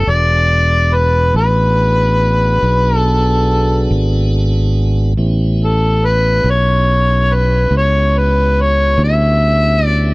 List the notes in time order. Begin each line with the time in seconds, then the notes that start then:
Already playing: A4
0.07 E1 B3 D4 F#4 G#4 D5
0.95 B4
1.34 A1 B4
2.62 B1
2.97 A4
3.91 G#1
5.17 A1 B3 C#4 E4 G4
5.64 A4
6.05 B4
6.44 B1
6.50 C#5
7.34 B4
7.71 C#2
7.77 C#5
8.18 B4
8.61 C#5
8.98 D2
9.04 E5
9.86 D5